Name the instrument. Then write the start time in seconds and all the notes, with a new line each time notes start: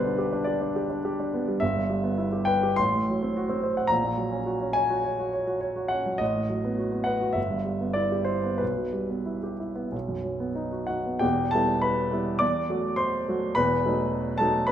grand piano
Already playing: B1 B2 D3 G3 B3 B4 C5 D5
0.04 D4
0.18 G4
0.32 D4
0.44 G4 D5
0.62 D4
0.76 G4
0.90 D4
1.05 G4
1.20 D4
1.34 B3
1.48 G3
1.60 G1 E5
1.76 G2
1.90 G3
2.04 B3
2.18 E4
2.32 G4
2.45 B4 G5
2.63 G4
2.76 A1 C6
2.94 A2
3.09 F#3
3.23 C4
3.37 F#4
3.49 C4
3.63 C5
3.77 F#5
3.87 A#1 A#5
4.04 A#2
4.17 F#3
4.32 C#4
4.46 F#4
4.61 C#4
4.73 C#5 G#5
4.90 F#4
5.04 C#5
5.19 F#4
5.33 C#5
5.47 F#4
5.61 C#5
5.76 F#4
5.88 C#4 F#5
6.06 F#3
6.18 A1 D#5
6.36 A2
6.49 F#3
6.65 B3
6.78 F#4
6.92 B3
7.04 B4 F#5
7.21 F#4
7.33 G1 E5
7.51 G2
7.65 G3
7.81 B3
7.93 E4 D5
8.12 G4
8.25 E4 C5
8.44 B3
8.58 B1 B4
8.77 B2
8.93 G3
9.10 B3
9.26 E4
9.43 G4
9.60 E4
9.75 B3
9.92 B1
10.08 F#2
10.24 F#3
10.40 B3
10.55 D#4
10.72 F#4
10.87 D#4 F#4 F#5
11.06 B3
11.19 E1 E2 G4 G5
11.51 G3 B3 E4 A4 A5
11.82 B4 B5
12.12 G3 B3 E4
12.39 E2 D5 D6
12.69 F#3 A3 F#4
12.96 C5 C6
13.28 F#3 A3 F#4
13.55 E1 E2 B4 B5
13.85 F#3 A3 D#4
14.38 F#3 A3 D#4 A4 A5
14.67 B4 B5